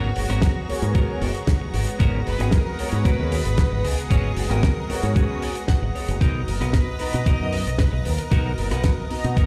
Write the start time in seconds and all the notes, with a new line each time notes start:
Already playing: G#1 G#3 B3 F#4 C#5 A#5
0.16 F#1, open hi-hat
0.28 G#1 B3 C#4 F#4 A#4, cross-stick, closed hi-hat
0.42 kick, snare, closed hi-hat
0.68 B3 F#4 G#4 A#4 C#5, muted clean electric guitar stroke, muted fingered electric bass stroke, open hi-hat
0.82 G#2, closed hi-hat
0.94 B3 C#4 F#4 A#4, kick, closed hi-hat
1.08 B3 F#4 G#4 A#4 C#5
1.22 F#1, open hi-hat
1.35 closed hi-hat
1.47 kick, snare, closed hi-hat
1.60 muted clean electric guitar stroke
1.73 G#1, muted clean electric guitar stroke, open hi-hat
1.87 closed hi-hat
1.99 G#1 B3 C#4 F#4 A#4 D#5, kick, closed hi-hat
2.27 F#1 B4, open hi-hat
2.39 G#1 B3 C#4 F#4 G#4, cross-stick, closed hi-hat
2.51 A#4, kick, snare, closed hi-hat
2.78 B3 F#4 G#4 C#5 A#5, muted clean electric guitar stroke, muted fingered electric bass stroke, open hi-hat
2.92 G#2 B4, closed hi-hat
3.04 B3 C#4 F#4 A#4, kick, closed hi-hat
3.19 D#2 B3 F#4 G#4 A#4 C#5
3.32 open hi-hat
3.45 G#1, closed hi-hat
3.57 kick, snare, closed hi-hat
3.71 G#1, muted clean electric guitar stroke
3.84 C#2 G#4, muted clean electric guitar stroke, open hi-hat
3.98 closed hi-hat
4.10 G#1 B3 C#4 F#4 G#4 C#5, kick, closed hi-hat
4.37 F#1, open hi-hat
4.50 G#1 B3 C#4 F#4 A#4, cross-stick, closed hi-hat
4.63 kick, snare, closed hi-hat
4.89 B3 F#4 G#4 A#4 C#5, muted clean electric guitar stroke, muted fingered electric bass stroke, open hi-hat
5.03 G#2, closed hi-hat
5.16 B3 C#4 F#4 G#4, kick, closed hi-hat
5.29 B3 F#4 G#4 A#4 C#5
5.42 G#5, open hi-hat
5.55 closed hi-hat
5.68 F#5, kick, snare, closed hi-hat
5.81 G#1, muted clean electric guitar stroke
5.94 C#5, muted clean electric guitar stroke, muted fingered electric bass stroke, open hi-hat
6.08 F#1, closed hi-hat
6.21 B1 B3 D#4 F#4 A#4 D#5 A#5, kick, closed hi-hat
6.47 F#1 A#4, open hi-hat
6.60 B1 B3 D#4 F#4 B4, cross-stick, closed hi-hat
6.73 B4, kick, snare, closed hi-hat
6.99 B3 D#4 F#4 D#5 A#5, muted clean electric guitar stroke, muted fingered electric bass stroke, open hi-hat
7.13 B2, closed hi-hat
7.26 B3 D#4 F#4 A#4 D#5, kick, closed hi-hat
7.40 F#2 B3 D#4 F#4 A#4 D#5
7.53 open hi-hat
7.67 B1, closed hi-hat
7.78 B4, kick, snare, closed hi-hat
7.92 B1, muted clean electric guitar stroke
8.05 D#2 A#4, muted clean electric guitar stroke, open hi-hat
8.18 closed hi-hat
8.31 B1 B3 D#4 F#4 A#4, kick, closed hi-hat
8.58 F#1, open hi-hat
8.70 B1 B3 D#4 F#4 B4, cross-stick, closed hi-hat
8.84 kick, snare, closed hi-hat
9.10 B3 D#4 F#4 D#5 A#5, muted clean electric guitar stroke, muted fingered electric bass stroke, open hi-hat
9.24 B2, closed hi-hat
9.36 B3 D#4 F#4 A#4, kick, closed hi-hat